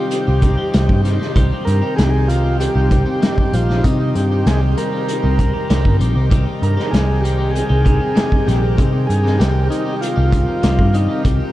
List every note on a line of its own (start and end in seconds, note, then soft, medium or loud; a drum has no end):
0.00 0.73 C3 medium
0.00 11.52 D#3 medium
0.00 0.41 G3 medium
0.00 0.28 C4 medium
0.00 0.28 D#4 medium
0.00 0.27 G4 medium
0.00 1.01 G4 medium
0.00 6.27 C5 medium
0.00 11.52 G5 medium
0.11 closed hi-hat medium
0.27 0.55 C2 medium
0.27 0.42 C4 soft
0.27 0.42 D#4 medium
0.27 0.43 G4 medium
0.41 0.73 G3 medium
0.41 0.58 C4 medium
0.41 0.58 D#4 medium
0.41 0.57 G4 medium
0.41 kick medium
0.41 closed hi-hat medium
0.57 0.74 C4 medium
0.57 0.74 D#4 medium
0.57 0.74 G4 medium
0.73 0.88 C2 medium
0.73 1.35 C3 medium
0.73 1.03 G3 medium
0.73 1.04 C4 medium
0.73 1.04 D#4 medium
0.73 1.05 G4 medium
0.73 snare loud
0.73 closed hi-hat medium
0.89 1.17 G2 medium
0.89 kick medium
1.03 1.35 G3 medium
1.03 1.21 C4 medium
1.03 1.20 D#4 medium
1.03 1.19 G4 medium
1.03 snare soft
1.03 closed hi-hat medium
1.19 1.36 C4 medium
1.19 1.36 D#4 medium
1.19 1.37 G4 medium
1.19 snare soft
1.35 1.49 C2 medium
1.35 1.97 C3 medium
1.35 1.97 G3 medium
1.35 1.53 C4 medium
1.35 1.52 D#4 medium
1.35 1.51 G4 medium
1.35 kick loud
1.35 closed hi-hat medium
1.51 1.83 C4 medium
1.51 1.83 D#4 medium
1.51 1.81 G4 medium
1.65 1.81 G2 medium
1.65 1.95 A#4 medium
1.65 closed hi-hat medium
1.82 1.98 C4 medium
1.82 1.98 D#4 medium
1.82 1.99 G4 medium
1.96 2.66 C2 medium
1.96 3.21 C3 medium
1.96 2.28 G3 medium
1.96 2.29 C4 medium
1.96 2.30 D#4 medium
1.96 2.31 G4 medium
1.96 2.04 G#4 medium
1.96 snare loud
1.96 closed hi-hat medium
2.03 2.11 G4 medium
2.10 2.28 G#4 medium
2.28 2.89 G3 medium
2.28 2.45 C4 medium
2.28 2.44 D#4 medium
2.28 2.57 F4 medium
2.28 2.43 G4 medium
2.28 closed hi-hat medium
2.43 2.76 C4 medium
2.43 2.76 D#4 medium
2.43 2.74 G4 medium
2.60 3.56 G4 loud
2.60 closed hi-hat medium
2.75 3.03 C2 medium
2.75 2.90 C4 medium
2.75 2.91 D#4 medium
2.75 2.91 G4 medium
2.90 3.21 G3 medium
2.90 3.07 C4 medium
2.90 3.06 D#4 medium
2.90 3.05 G4 medium
2.90 kick medium
2.90 closed hi-hat soft
3.06 3.22 C4 medium
3.06 3.22 D#4 medium
3.06 3.23 G4 medium
3.21 3.84 C3 medium
3.21 3.53 G3 medium
3.21 3.54 C4 medium
3.21 3.54 D#4 medium
3.21 3.55 G4 medium
3.21 snare loud
3.21 closed hi-hat medium
3.38 kick medium
3.53 3.81 A#1 medium
3.53 3.84 G3 medium
3.53 3.70 C4 medium
3.53 3.70 D#4 medium
3.53 3.85 F4 medium
3.53 3.69 G4 medium
3.53 closed hi-hat medium
3.69 3.84 C4 soft
3.69 3.85 D#4 medium
3.69 3.85 G4 medium
3.69 snare soft
3.83 4.46 C3 medium
3.83 4.12 C3 medium
3.83 4.46 G3 medium
3.83 4.01 C4 medium
3.83 4.15 D#4 medium
3.83 4.00 D#4 medium
3.83 3.99 G4 medium
3.83 kick medium
3.83 closed hi-hat medium
4.00 4.32 C4 medium
4.00 4.32 D#4 medium
4.00 4.31 G4 medium
4.16 4.42 G2 medium
4.16 4.47 G4 medium
4.16 closed hi-hat medium
4.31 4.47 C4 medium
4.31 4.47 D#4 medium
4.31 4.48 G4 medium
4.46 4.73 C2 medium
4.46 5.69 C3 medium
4.46 4.76 G3 medium
4.46 4.77 C4 medium
4.46 4.77 D#4 medium
4.46 4.78 G4 medium
4.46 4.60 G#4 medium
4.46 snare loud
4.46 closed hi-hat medium
4.77 5.38 G3 medium
4.77 4.94 C4 medium
4.77 4.93 D#4 medium
4.77 4.92 G4 medium
4.77 5.97 A#4 medium
4.77 closed hi-hat medium
4.92 5.25 C4 medium
4.92 5.23 D#4 medium
4.92 5.22 G4 medium
5.09 closed hi-hat medium
5.23 5.51 C2 medium
5.23 5.39 C4 medium
5.23 5.39 D#4 medium
5.23 5.40 G4 medium
5.39 5.69 G3 medium
5.39 5.55 C4 medium
5.39 5.54 D#4 medium
5.39 5.53 G4 medium
5.39 kick medium
5.39 closed hi-hat medium
5.53 5.69 C4 medium
5.53 5.70 D#4 medium
5.53 5.70 G4 medium
5.69 5.84 C2 medium
5.69 6.30 C3 medium
5.69 5.99 G3 medium
5.69 5.99 C4 medium
5.69 6.00 D#4 medium
5.69 6.01 G4 medium
5.69 snare loud
5.69 closed hi-hat medium
5.85 5.99 G1 medium
5.85 kick medium
5.99 6.14 A#1 medium
5.99 6.30 G3 medium
5.99 6.17 C4 medium
5.99 6.16 D#4 medium
5.99 6.15 G4 medium
5.99 closed hi-hat medium
6.15 6.30 C2 medium
6.15 6.31 C4 soft
6.15 6.31 D#4 medium
6.15 6.31 G4 medium
6.30 6.45 C2 medium
6.30 6.92 C3 medium
6.30 6.93 G3 medium
6.30 6.47 C4 medium
6.30 6.46 D#4 medium
6.30 6.45 G4 medium
6.30 11.52 A#4 medium
6.30 kick loud
6.30 closed hi-hat medium
6.46 6.78 C4 soft
6.46 6.77 D#4 medium
6.46 6.77 G4 medium
6.62 6.76 G2 medium
6.62 6.95 A#4 medium
6.62 closed hi-hat medium
6.77 6.93 C4 medium
6.77 6.94 D#4 medium
6.77 6.94 G4 medium
6.77 snare soft
6.91 7.61 C2 medium
6.91 8.14 C3 medium
6.91 7.23 G3 medium
6.91 7.24 C4 medium
6.91 7.24 D#4 medium
6.91 7.25 G4 medium
6.91 7.24 G#4 medium
6.91 snare loud
6.91 closed hi-hat medium
7.21 7.84 G3 medium
7.21 7.39 C4 medium
7.21 7.38 D#4 medium
7.21 7.54 G4 medium
7.25 7.37 G4 medium
7.25 closed hi-hat medium
7.38 7.71 C4 medium
7.38 7.69 D#4 medium
7.38 7.69 G4 medium
7.51 8.48 G#4 medium
7.55 closed hi-hat medium
7.69 7.97 C2 medium
7.69 7.84 C4 medium
7.69 7.85 D#4 medium
7.69 7.86 G4 medium
7.84 8.15 G3 medium
7.84 8.01 C4 medium
7.84 8.00 D#4 medium
7.84 7.99 G4 medium
7.84 kick medium
7.84 closed hi-hat soft
7.99 8.15 C4 medium
7.99 8.15 D#4 medium
7.99 8.16 G4 medium
8.14 8.76 C3 medium
8.14 8.46 G3 medium
8.14 8.46 C4 medium
8.14 8.47 D#4 medium
8.14 8.47 G4 medium
8.14 snare loud
8.14 closed hi-hat medium
8.32 kick medium
8.46 8.75 A#1 medium
8.46 8.77 G3 medium
8.46 8.63 C4 medium
8.46 8.62 D#4 medium
8.46 8.76 G4 medium
8.46 8.61 G4 medium
8.46 snare soft
8.46 closed hi-hat medium
8.62 8.77 C4 soft
8.62 8.78 D#4 medium
8.62 8.78 G4 medium
8.77 9.38 C3 medium
8.77 9.06 C3 medium
8.77 9.39 G3 medium
8.77 8.94 C4 medium
8.77 8.93 D#4 medium
8.77 8.92 G4 medium
8.77 kick loud
8.77 closed hi-hat medium
8.92 9.25 C4 medium
8.92 9.24 D#4 medium
8.92 9.23 G4 medium
9.07 9.36 G2 medium
9.07 9.40 G#4 loud
9.07 closed hi-hat medium
9.23 9.39 C4 medium
9.23 9.40 D#4 medium
9.23 9.40 G4 medium
9.23 snare soft
9.39 9.67 C2 medium
9.39 10.61 C3 medium
9.39 9.68 G3 medium
9.39 9.69 C4 medium
9.39 9.70 D#4 medium
9.39 9.68 G4 medium
9.39 9.71 G4 medium
9.39 snare loud
9.39 closed hi-hat medium
9.69 10.31 G3 medium
9.69 9.86 C4 medium
9.69 9.85 D#4 medium
9.69 9.95 D#4 medium
9.69 9.84 G4 medium
9.69 closed hi-hat medium
9.85 10.17 C4 medium
9.85 10.16 D#4 medium
9.85 10.15 G4 medium
9.93 10.01 G4 medium
10.01 10.97 F4 medium
10.01 closed hi-hat medium
10.16 10.44 C2 medium
10.16 10.32 C4 medium
10.16 10.32 D#4 medium
10.16 10.33 G4 medium
10.32 10.62 G3 medium
10.32 10.48 C4 medium
10.32 10.47 D#4 medium
10.32 10.46 G4 medium
10.32 kick medium
10.32 closed hi-hat medium
10.46 10.63 C4 medium
10.46 10.63 D#4 medium
10.46 10.63 G4 medium
10.62 10.77 C2 medium
10.62 11.24 C3 medium
10.62 10.93 G3 medium
10.62 10.93 C4 medium
10.62 10.94 D#4 medium
10.62 10.94 G4 medium
10.62 snare loud
10.62 closed hi-hat medium
10.79 11.06 G2 medium
10.79 kick medium
10.93 11.24 G3 medium
10.93 11.10 C4 medium
10.93 11.09 D#4 medium
10.93 11.23 D#4 medium
10.93 11.08 G4 medium
10.93 closed hi-hat medium
11.08 11.25 C4 medium
11.08 11.25 D#4 medium
11.08 11.25 G4 medium
11.24 11.39 C2 loud
11.24 11.52 C3 medium
11.24 11.52 G3 medium
11.24 11.40 C4 medium
11.24 11.40 D#4 medium
11.24 11.38 G4 medium
11.24 kick medium
11.24 closed hi-hat medium
11.39 11.52 C4 medium
11.39 11.52 D#4 medium
11.39 11.52 G4 medium